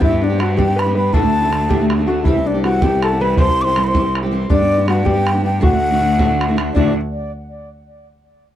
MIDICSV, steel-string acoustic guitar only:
0, 0, Header, 1, 2, 480
1, 0, Start_track
1, 0, Tempo, 375000
1, 10, Time_signature, 6, 3, 24, 8
1, 10952, End_track
2, 0, Start_track
2, 0, Title_t, "Steel-string acoustic guitar"
2, 0, Program_c, 0, 25
2, 0, Note_on_c, 0, 55, 89
2, 0, Note_on_c, 0, 59, 88
2, 9, Note_on_c, 0, 62, 97
2, 14, Note_on_c, 0, 67, 90
2, 107, Note_off_c, 0, 67, 0
2, 122, Note_on_c, 0, 67, 64
2, 127, Note_off_c, 0, 62, 0
2, 130, Note_off_c, 0, 55, 0
2, 136, Note_off_c, 0, 59, 0
2, 143, Note_on_c, 0, 62, 59
2, 161, Note_on_c, 0, 59, 54
2, 362, Note_off_c, 0, 67, 0
2, 378, Note_off_c, 0, 62, 0
2, 378, Note_on_c, 0, 67, 70
2, 393, Note_on_c, 0, 62, 63
2, 398, Note_off_c, 0, 59, 0
2, 420, Note_on_c, 0, 59, 50
2, 489, Note_on_c, 0, 55, 67
2, 493, Note_off_c, 0, 59, 0
2, 497, Note_off_c, 0, 67, 0
2, 505, Note_off_c, 0, 62, 0
2, 509, Note_on_c, 0, 59, 71
2, 524, Note_on_c, 0, 62, 75
2, 539, Note_on_c, 0, 67, 74
2, 714, Note_off_c, 0, 55, 0
2, 722, Note_off_c, 0, 59, 0
2, 729, Note_on_c, 0, 55, 82
2, 737, Note_on_c, 0, 59, 73
2, 738, Note_off_c, 0, 62, 0
2, 749, Note_off_c, 0, 67, 0
2, 753, Note_on_c, 0, 62, 87
2, 764, Note_on_c, 0, 67, 91
2, 844, Note_off_c, 0, 67, 0
2, 860, Note_on_c, 0, 67, 58
2, 862, Note_off_c, 0, 55, 0
2, 866, Note_off_c, 0, 59, 0
2, 867, Note_off_c, 0, 62, 0
2, 882, Note_on_c, 0, 62, 51
2, 902, Note_on_c, 0, 59, 43
2, 1088, Note_off_c, 0, 67, 0
2, 1103, Note_on_c, 0, 67, 58
2, 1106, Note_off_c, 0, 62, 0
2, 1121, Note_on_c, 0, 62, 56
2, 1128, Note_off_c, 0, 59, 0
2, 1148, Note_on_c, 0, 59, 47
2, 1220, Note_off_c, 0, 67, 0
2, 1223, Note_off_c, 0, 59, 0
2, 1223, Note_on_c, 0, 55, 59
2, 1229, Note_off_c, 0, 62, 0
2, 1239, Note_on_c, 0, 59, 58
2, 1246, Note_on_c, 0, 62, 57
2, 1258, Note_on_c, 0, 67, 70
2, 1442, Note_on_c, 0, 38, 95
2, 1446, Note_off_c, 0, 62, 0
2, 1451, Note_off_c, 0, 55, 0
2, 1454, Note_on_c, 0, 45, 80
2, 1457, Note_off_c, 0, 59, 0
2, 1459, Note_on_c, 0, 50, 88
2, 1461, Note_on_c, 0, 62, 98
2, 1462, Note_on_c, 0, 57, 92
2, 1466, Note_off_c, 0, 67, 0
2, 1472, Note_on_c, 0, 66, 93
2, 1547, Note_off_c, 0, 66, 0
2, 1561, Note_off_c, 0, 62, 0
2, 1563, Note_on_c, 0, 66, 66
2, 1576, Note_on_c, 0, 62, 55
2, 1578, Note_off_c, 0, 38, 0
2, 1578, Note_off_c, 0, 57, 0
2, 1584, Note_off_c, 0, 45, 0
2, 1587, Note_off_c, 0, 50, 0
2, 1593, Note_on_c, 0, 57, 48
2, 1608, Note_on_c, 0, 50, 49
2, 1804, Note_off_c, 0, 66, 0
2, 1813, Note_off_c, 0, 62, 0
2, 1819, Note_on_c, 0, 66, 74
2, 1828, Note_on_c, 0, 62, 64
2, 1834, Note_off_c, 0, 57, 0
2, 1841, Note_off_c, 0, 50, 0
2, 1847, Note_on_c, 0, 57, 52
2, 1856, Note_on_c, 0, 50, 46
2, 1900, Note_off_c, 0, 50, 0
2, 1915, Note_on_c, 0, 50, 66
2, 1918, Note_off_c, 0, 57, 0
2, 1927, Note_off_c, 0, 62, 0
2, 1934, Note_on_c, 0, 57, 59
2, 1938, Note_off_c, 0, 66, 0
2, 1942, Note_on_c, 0, 62, 59
2, 1953, Note_on_c, 0, 66, 62
2, 2157, Note_on_c, 0, 38, 85
2, 2158, Note_off_c, 0, 50, 0
2, 2162, Note_on_c, 0, 45, 81
2, 2163, Note_off_c, 0, 57, 0
2, 2171, Note_off_c, 0, 62, 0
2, 2172, Note_off_c, 0, 66, 0
2, 2175, Note_on_c, 0, 50, 73
2, 2178, Note_on_c, 0, 57, 93
2, 2184, Note_on_c, 0, 62, 87
2, 2187, Note_on_c, 0, 66, 83
2, 2280, Note_off_c, 0, 66, 0
2, 2287, Note_off_c, 0, 62, 0
2, 2295, Note_on_c, 0, 66, 59
2, 2296, Note_off_c, 0, 38, 0
2, 2298, Note_off_c, 0, 45, 0
2, 2302, Note_on_c, 0, 62, 58
2, 2305, Note_off_c, 0, 50, 0
2, 2306, Note_off_c, 0, 57, 0
2, 2320, Note_on_c, 0, 57, 62
2, 2328, Note_on_c, 0, 50, 53
2, 2532, Note_off_c, 0, 66, 0
2, 2547, Note_on_c, 0, 66, 55
2, 2548, Note_off_c, 0, 62, 0
2, 2557, Note_off_c, 0, 57, 0
2, 2561, Note_off_c, 0, 50, 0
2, 2567, Note_on_c, 0, 62, 54
2, 2575, Note_on_c, 0, 57, 52
2, 2595, Note_on_c, 0, 50, 40
2, 2630, Note_off_c, 0, 50, 0
2, 2645, Note_on_c, 0, 50, 65
2, 2647, Note_off_c, 0, 57, 0
2, 2662, Note_off_c, 0, 66, 0
2, 2662, Note_on_c, 0, 57, 59
2, 2664, Note_off_c, 0, 62, 0
2, 2679, Note_on_c, 0, 62, 69
2, 2689, Note_on_c, 0, 66, 63
2, 2881, Note_on_c, 0, 48, 84
2, 2882, Note_off_c, 0, 50, 0
2, 2888, Note_on_c, 0, 52, 87
2, 2891, Note_off_c, 0, 57, 0
2, 2898, Note_on_c, 0, 55, 97
2, 2899, Note_off_c, 0, 62, 0
2, 2904, Note_off_c, 0, 66, 0
2, 2908, Note_on_c, 0, 60, 83
2, 2917, Note_on_c, 0, 67, 98
2, 3000, Note_off_c, 0, 67, 0
2, 3015, Note_on_c, 0, 67, 61
2, 3018, Note_off_c, 0, 48, 0
2, 3021, Note_off_c, 0, 52, 0
2, 3024, Note_off_c, 0, 60, 0
2, 3026, Note_off_c, 0, 55, 0
2, 3039, Note_on_c, 0, 60, 66
2, 3055, Note_on_c, 0, 55, 53
2, 3237, Note_off_c, 0, 67, 0
2, 3253, Note_on_c, 0, 67, 63
2, 3254, Note_off_c, 0, 60, 0
2, 3269, Note_on_c, 0, 60, 54
2, 3270, Note_off_c, 0, 55, 0
2, 3285, Note_on_c, 0, 55, 48
2, 3372, Note_on_c, 0, 52, 63
2, 3375, Note_off_c, 0, 67, 0
2, 3380, Note_off_c, 0, 55, 0
2, 3383, Note_off_c, 0, 60, 0
2, 3395, Note_on_c, 0, 55, 56
2, 3399, Note_on_c, 0, 60, 67
2, 3412, Note_on_c, 0, 67, 71
2, 3604, Note_off_c, 0, 55, 0
2, 3606, Note_off_c, 0, 52, 0
2, 3609, Note_on_c, 0, 48, 70
2, 3619, Note_off_c, 0, 60, 0
2, 3620, Note_on_c, 0, 55, 82
2, 3621, Note_off_c, 0, 67, 0
2, 3625, Note_on_c, 0, 52, 67
2, 3632, Note_on_c, 0, 60, 84
2, 3636, Note_on_c, 0, 67, 74
2, 3721, Note_off_c, 0, 67, 0
2, 3736, Note_on_c, 0, 67, 62
2, 3740, Note_off_c, 0, 60, 0
2, 3741, Note_off_c, 0, 48, 0
2, 3747, Note_off_c, 0, 55, 0
2, 3750, Note_off_c, 0, 52, 0
2, 3755, Note_on_c, 0, 60, 49
2, 3778, Note_on_c, 0, 55, 43
2, 3971, Note_off_c, 0, 67, 0
2, 3986, Note_off_c, 0, 60, 0
2, 3987, Note_on_c, 0, 67, 51
2, 4002, Note_on_c, 0, 60, 54
2, 4003, Note_off_c, 0, 55, 0
2, 4018, Note_on_c, 0, 55, 47
2, 4089, Note_off_c, 0, 55, 0
2, 4096, Note_on_c, 0, 52, 68
2, 4102, Note_off_c, 0, 67, 0
2, 4104, Note_off_c, 0, 60, 0
2, 4104, Note_on_c, 0, 55, 62
2, 4119, Note_on_c, 0, 60, 66
2, 4131, Note_on_c, 0, 67, 65
2, 4311, Note_off_c, 0, 52, 0
2, 4316, Note_off_c, 0, 55, 0
2, 4317, Note_on_c, 0, 48, 82
2, 4323, Note_off_c, 0, 67, 0
2, 4324, Note_off_c, 0, 60, 0
2, 4327, Note_on_c, 0, 52, 86
2, 4331, Note_on_c, 0, 55, 83
2, 4339, Note_on_c, 0, 60, 88
2, 4339, Note_on_c, 0, 67, 104
2, 4437, Note_off_c, 0, 67, 0
2, 4453, Note_on_c, 0, 67, 51
2, 4456, Note_off_c, 0, 48, 0
2, 4459, Note_off_c, 0, 60, 0
2, 4460, Note_off_c, 0, 52, 0
2, 4463, Note_off_c, 0, 55, 0
2, 4475, Note_on_c, 0, 60, 62
2, 4492, Note_on_c, 0, 55, 49
2, 4679, Note_off_c, 0, 67, 0
2, 4695, Note_on_c, 0, 67, 61
2, 4702, Note_off_c, 0, 60, 0
2, 4717, Note_on_c, 0, 60, 58
2, 4718, Note_off_c, 0, 55, 0
2, 4733, Note_on_c, 0, 55, 54
2, 4813, Note_off_c, 0, 55, 0
2, 4815, Note_off_c, 0, 67, 0
2, 4817, Note_on_c, 0, 52, 69
2, 4822, Note_off_c, 0, 60, 0
2, 4828, Note_on_c, 0, 55, 62
2, 4837, Note_on_c, 0, 60, 66
2, 4852, Note_on_c, 0, 67, 65
2, 5030, Note_off_c, 0, 52, 0
2, 5034, Note_on_c, 0, 48, 72
2, 5038, Note_off_c, 0, 55, 0
2, 5041, Note_off_c, 0, 60, 0
2, 5046, Note_on_c, 0, 52, 81
2, 5052, Note_off_c, 0, 67, 0
2, 5053, Note_on_c, 0, 55, 80
2, 5056, Note_on_c, 0, 60, 88
2, 5068, Note_on_c, 0, 67, 79
2, 5145, Note_off_c, 0, 67, 0
2, 5161, Note_on_c, 0, 67, 47
2, 5166, Note_off_c, 0, 60, 0
2, 5174, Note_off_c, 0, 48, 0
2, 5177, Note_off_c, 0, 55, 0
2, 5180, Note_off_c, 0, 52, 0
2, 5181, Note_on_c, 0, 60, 52
2, 5192, Note_on_c, 0, 55, 40
2, 5395, Note_off_c, 0, 67, 0
2, 5411, Note_on_c, 0, 67, 67
2, 5415, Note_off_c, 0, 60, 0
2, 5430, Note_on_c, 0, 60, 61
2, 5433, Note_off_c, 0, 55, 0
2, 5452, Note_on_c, 0, 55, 61
2, 5520, Note_off_c, 0, 55, 0
2, 5521, Note_on_c, 0, 52, 64
2, 5526, Note_off_c, 0, 60, 0
2, 5533, Note_off_c, 0, 67, 0
2, 5536, Note_on_c, 0, 55, 70
2, 5541, Note_on_c, 0, 60, 69
2, 5557, Note_on_c, 0, 67, 72
2, 5738, Note_off_c, 0, 55, 0
2, 5749, Note_off_c, 0, 52, 0
2, 5754, Note_on_c, 0, 55, 87
2, 5762, Note_off_c, 0, 67, 0
2, 5763, Note_on_c, 0, 59, 78
2, 5770, Note_off_c, 0, 60, 0
2, 5776, Note_on_c, 0, 62, 88
2, 5777, Note_on_c, 0, 67, 107
2, 5878, Note_off_c, 0, 67, 0
2, 5894, Note_off_c, 0, 55, 0
2, 5894, Note_on_c, 0, 67, 58
2, 5896, Note_off_c, 0, 62, 0
2, 5898, Note_off_c, 0, 59, 0
2, 5912, Note_on_c, 0, 62, 57
2, 5932, Note_on_c, 0, 59, 56
2, 6104, Note_off_c, 0, 67, 0
2, 6119, Note_on_c, 0, 67, 66
2, 6122, Note_off_c, 0, 62, 0
2, 6138, Note_on_c, 0, 62, 52
2, 6144, Note_off_c, 0, 59, 0
2, 6160, Note_on_c, 0, 59, 55
2, 6216, Note_on_c, 0, 55, 64
2, 6219, Note_off_c, 0, 59, 0
2, 6231, Note_off_c, 0, 62, 0
2, 6235, Note_on_c, 0, 59, 71
2, 6246, Note_on_c, 0, 62, 68
2, 6247, Note_off_c, 0, 67, 0
2, 6264, Note_on_c, 0, 67, 69
2, 6420, Note_off_c, 0, 55, 0
2, 6435, Note_on_c, 0, 55, 74
2, 6439, Note_off_c, 0, 59, 0
2, 6447, Note_off_c, 0, 62, 0
2, 6451, Note_off_c, 0, 67, 0
2, 6454, Note_on_c, 0, 59, 67
2, 6462, Note_on_c, 0, 62, 74
2, 6466, Note_on_c, 0, 67, 77
2, 6557, Note_off_c, 0, 67, 0
2, 6572, Note_on_c, 0, 67, 58
2, 6580, Note_off_c, 0, 62, 0
2, 6594, Note_off_c, 0, 55, 0
2, 6596, Note_on_c, 0, 62, 53
2, 6600, Note_off_c, 0, 59, 0
2, 6615, Note_on_c, 0, 59, 45
2, 6813, Note_off_c, 0, 67, 0
2, 6828, Note_on_c, 0, 67, 60
2, 6836, Note_off_c, 0, 62, 0
2, 6851, Note_on_c, 0, 62, 54
2, 6857, Note_off_c, 0, 59, 0
2, 6873, Note_on_c, 0, 59, 48
2, 6941, Note_off_c, 0, 59, 0
2, 6947, Note_on_c, 0, 55, 59
2, 6951, Note_off_c, 0, 62, 0
2, 6956, Note_on_c, 0, 59, 57
2, 6962, Note_off_c, 0, 67, 0
2, 6966, Note_on_c, 0, 62, 61
2, 6984, Note_on_c, 0, 67, 69
2, 7168, Note_on_c, 0, 38, 81
2, 7170, Note_off_c, 0, 62, 0
2, 7173, Note_off_c, 0, 55, 0
2, 7178, Note_on_c, 0, 50, 96
2, 7179, Note_on_c, 0, 45, 89
2, 7180, Note_off_c, 0, 59, 0
2, 7186, Note_on_c, 0, 62, 87
2, 7192, Note_off_c, 0, 67, 0
2, 7193, Note_on_c, 0, 57, 95
2, 7197, Note_on_c, 0, 66, 84
2, 7285, Note_off_c, 0, 66, 0
2, 7301, Note_on_c, 0, 66, 59
2, 7303, Note_off_c, 0, 57, 0
2, 7318, Note_on_c, 0, 57, 61
2, 7319, Note_off_c, 0, 62, 0
2, 7320, Note_off_c, 0, 38, 0
2, 7325, Note_off_c, 0, 50, 0
2, 7326, Note_off_c, 0, 45, 0
2, 7334, Note_on_c, 0, 62, 48
2, 7340, Note_on_c, 0, 50, 49
2, 7543, Note_off_c, 0, 66, 0
2, 7554, Note_off_c, 0, 57, 0
2, 7559, Note_on_c, 0, 66, 62
2, 7567, Note_off_c, 0, 62, 0
2, 7569, Note_on_c, 0, 57, 56
2, 7574, Note_off_c, 0, 50, 0
2, 7582, Note_on_c, 0, 62, 54
2, 7590, Note_on_c, 0, 50, 49
2, 7664, Note_off_c, 0, 50, 0
2, 7677, Note_off_c, 0, 62, 0
2, 7679, Note_on_c, 0, 50, 71
2, 7687, Note_off_c, 0, 66, 0
2, 7692, Note_off_c, 0, 57, 0
2, 7692, Note_on_c, 0, 62, 68
2, 7713, Note_on_c, 0, 57, 74
2, 7715, Note_on_c, 0, 66, 69
2, 7911, Note_off_c, 0, 50, 0
2, 7914, Note_on_c, 0, 38, 80
2, 7919, Note_off_c, 0, 57, 0
2, 7919, Note_off_c, 0, 62, 0
2, 7922, Note_on_c, 0, 45, 73
2, 7924, Note_off_c, 0, 66, 0
2, 7926, Note_on_c, 0, 50, 74
2, 7934, Note_on_c, 0, 57, 87
2, 7935, Note_on_c, 0, 62, 72
2, 7939, Note_on_c, 0, 66, 105
2, 8025, Note_off_c, 0, 66, 0
2, 8040, Note_on_c, 0, 66, 63
2, 8044, Note_off_c, 0, 57, 0
2, 8053, Note_off_c, 0, 38, 0
2, 8057, Note_off_c, 0, 45, 0
2, 8059, Note_off_c, 0, 50, 0
2, 8059, Note_off_c, 0, 62, 0
2, 8060, Note_on_c, 0, 57, 59
2, 8075, Note_on_c, 0, 62, 54
2, 8082, Note_on_c, 0, 50, 57
2, 8283, Note_off_c, 0, 66, 0
2, 8292, Note_off_c, 0, 57, 0
2, 8299, Note_on_c, 0, 66, 71
2, 8308, Note_on_c, 0, 57, 60
2, 8313, Note_off_c, 0, 62, 0
2, 8317, Note_off_c, 0, 50, 0
2, 8328, Note_on_c, 0, 62, 52
2, 8332, Note_on_c, 0, 50, 59
2, 8388, Note_off_c, 0, 50, 0
2, 8400, Note_off_c, 0, 62, 0
2, 8403, Note_on_c, 0, 50, 78
2, 8412, Note_off_c, 0, 57, 0
2, 8415, Note_on_c, 0, 62, 73
2, 8417, Note_off_c, 0, 66, 0
2, 8428, Note_on_c, 0, 57, 74
2, 8444, Note_on_c, 0, 66, 69
2, 8636, Note_off_c, 0, 50, 0
2, 8636, Note_on_c, 0, 38, 86
2, 8639, Note_off_c, 0, 62, 0
2, 8641, Note_on_c, 0, 45, 85
2, 8649, Note_off_c, 0, 57, 0
2, 8649, Note_off_c, 0, 66, 0
2, 8651, Note_on_c, 0, 50, 77
2, 8654, Note_on_c, 0, 62, 91
2, 8664, Note_on_c, 0, 66, 87
2, 8665, Note_on_c, 0, 57, 82
2, 8853, Note_off_c, 0, 38, 0
2, 8856, Note_off_c, 0, 45, 0
2, 8861, Note_off_c, 0, 50, 0
2, 8862, Note_off_c, 0, 62, 0
2, 8867, Note_off_c, 0, 57, 0
2, 8867, Note_off_c, 0, 66, 0
2, 10952, End_track
0, 0, End_of_file